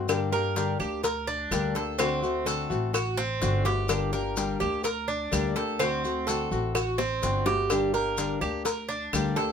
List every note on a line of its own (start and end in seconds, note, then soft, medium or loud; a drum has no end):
0.00 0.74 G2 loud
0.08 0.31 D3 medium
0.08 0.32 G3 medium
0.08 0.32 A#3 medium
0.08 0.32 D4 medium
0.08 0.31 G4 medium
0.08 cowbell loud
0.08 claves medium
0.08 maracas medium
0.32 0.56 A#3 soft
0.32 0.56 D4 soft
0.32 0.55 G4 medium
0.32 0.79 A#4 medium
0.32 maracas soft
0.56 0.79 D3 medium
0.56 0.79 G3 medium
0.56 0.79 A#3 medium
0.56 0.79 D4 medium
0.56 0.78 G4 medium
0.56 cowbell medium
0.56 maracas medium
0.80 1.47 D2 medium
0.80 1.03 A#3 soft
0.80 1.03 D4 soft
0.80 1.03 G4 soft
0.80 1.03 G4 medium
0.80 claves medium
0.80 maracas soft
1.04 1.27 A#4 medium
1.04 muted nylon-string guitar stroke medium
1.04 cowbell loud
1.04 maracas medium
1.27 1.74 D4 medium
1.27 maracas soft
1.51 2.64 D2 loud
1.51 1.74 D3 medium
1.51 1.75 G3 medium
1.51 1.75 A#3 medium
1.51 1.75 D4 medium
1.51 1.74 G4 medium
1.51 cowbell medium
1.51 claves medium
1.51 maracas medium
1.75 1.99 A#3 soft
1.75 1.99 D4 soft
1.75 1.98 G4 soft
1.75 1.98 A4 medium
1.75 cowbell medium
1.75 maracas soft
1.99 2.22 D3 medium
1.99 2.22 A3 medium
1.99 2.45 C4 medium
1.99 2.22 C4 medium
1.99 2.21 F#4 medium
1.99 cowbell loud
1.99 claves medium
1.99 maracas medium
2.23 2.45 A3 soft
2.23 2.45 C4 soft
2.23 2.46 F#4 medium
2.23 maracas soft
2.45 2.69 D3 medium
2.45 2.69 A3 medium
2.45 2.70 C4 medium
2.45 2.69 F#4 medium
2.45 2.93 A4 medium
2.45 cowbell medium
2.45 maracas medium
2.70 3.38 A1 medium
2.70 2.93 A3 soft
2.70 2.93 C4 soft
2.70 2.93 F#4 medium
2.70 maracas soft
2.93 3.17 F#4 medium
2.93 muted nylon-string guitar stroke medium
2.93 cowbell loud
2.93 claves medium
2.93 maracas medium
3.17 3.64 C4 loud
3.17 maracas soft
3.41 4.55 G1 loud
3.41 3.64 D3 medium
3.41 3.65 A3 medium
3.41 3.64 C4 medium
3.41 3.64 F#4 medium
3.41 cowbell medium
3.41 maracas medium
3.65 3.89 A3 soft
3.65 3.89 C4 soft
3.65 3.88 F#4 soft
3.65 4.12 G4 medium
3.65 cowbell medium
3.65 maracas soft
3.89 4.12 D3 medium
3.89 4.12 G3 medium
3.89 4.13 A#3 medium
3.89 4.13 D4 medium
3.89 4.12 G4 medium
3.89 cowbell loud
3.89 claves medium
3.89 maracas medium
4.13 4.36 A#3 soft
4.13 4.36 D4 soft
4.13 4.36 G4 medium
4.13 4.59 A#4 medium
4.13 maracas soft
4.36 4.60 D3 medium
4.36 4.60 G3 medium
4.36 4.60 A#3 medium
4.36 4.60 D4 medium
4.36 4.59 G4 medium
4.36 cowbell medium
4.36 maracas medium
4.60 5.29 D2 medium
4.60 4.83 A#3 soft
4.60 4.84 D4 soft
4.60 4.84 G4 medium
4.60 claves medium
4.60 maracas soft
4.84 5.07 A#4 medium
4.84 muted nylon-string guitar stroke medium
4.84 cowbell loud
4.84 maracas medium
5.08 5.54 D4 medium
5.08 maracas soft
5.31 6.45 D2 loud
5.31 5.55 D3 medium
5.31 5.55 G3 medium
5.31 5.55 A#3 medium
5.31 5.56 D4 medium
5.31 5.55 G4 medium
5.31 cowbell medium
5.31 claves medium
5.31 maracas medium
5.56 5.80 A#3 soft
5.56 5.79 D4 soft
5.56 5.79 G4 soft
5.56 5.79 A4 medium
5.56 cowbell medium
5.56 maracas soft
5.79 6.03 D3 medium
5.79 6.04 A3 medium
5.79 6.26 C4 medium
5.79 6.04 C4 medium
5.79 6.03 F#4 medium
5.79 cowbell loud
5.79 claves medium
5.79 maracas medium
6.04 6.27 A3 soft
6.04 6.27 C4 soft
6.04 6.27 F#4 soft
6.04 maracas soft
6.27 6.50 D3 medium
6.27 6.51 A3 medium
6.27 6.51 C4 medium
6.27 6.50 F#4 medium
6.27 6.73 A4 medium
6.27 cowbell medium
6.27 maracas medium
6.51 7.19 A1 medium
6.51 6.74 A3 soft
6.51 6.74 C4 soft
6.51 6.74 F#4 medium
6.51 maracas soft
6.75 6.98 F#4 medium
6.75 muted nylon-string guitar stroke medium
6.75 cowbell loud
6.75 claves medium
6.75 maracas medium
6.98 7.45 C4 medium
6.98 high bongo medium
6.98 maracas soft
7.22 8.35 G1 loud
7.22 7.45 D3 medium
7.22 7.46 A3 medium
7.22 7.46 C4 medium
7.22 7.45 F#4 medium
7.22 cowbell medium
7.22 maracas medium
7.46 7.70 A3 soft
7.46 7.70 C4 soft
7.46 7.69 F#4 soft
7.46 7.92 G4 medium
7.46 cowbell medium
7.46 low bongo medium
7.46 maracas soft
7.70 7.93 D3 medium
7.70 7.94 G3 medium
7.70 7.94 A#3 medium
7.70 7.93 D4 medium
7.70 7.92 G4 medium
7.70 cowbell loud
7.70 claves medium
7.70 maracas medium
7.93 8.17 A#3 soft
7.93 8.17 D4 medium
7.93 8.17 G4 medium
7.93 8.40 A#4 medium
7.93 maracas soft
8.17 8.40 D3 medium
8.17 8.41 G3 medium
8.17 8.41 A#3 medium
8.17 8.41 D4 medium
8.17 8.40 G4 medium
8.17 cowbell medium
8.17 maracas medium
8.41 9.09 D2 medium
8.41 8.64 A#3 soft
8.41 8.65 D4 soft
8.41 8.64 G4 soft
8.41 8.65 G4 medium
8.41 claves medium
8.41 maracas soft
8.65 8.88 A#4 medium
8.65 muted nylon-string guitar stroke medium
8.65 cowbell loud
8.65 maracas medium
8.89 9.35 D4 medium
8.89 maracas soft
9.13 9.52 D2 loud
9.13 9.36 D3 medium
9.13 9.36 G3 medium
9.13 9.37 A#3 medium
9.13 9.37 D4 medium
9.13 9.36 G4 loud
9.13 cowbell medium
9.13 claves medium
9.13 maracas medium
9.36 9.52 A#3 soft
9.36 9.52 D4 soft
9.36 9.52 G4 soft
9.36 9.52 A4 medium
9.36 cowbell medium
9.36 maracas soft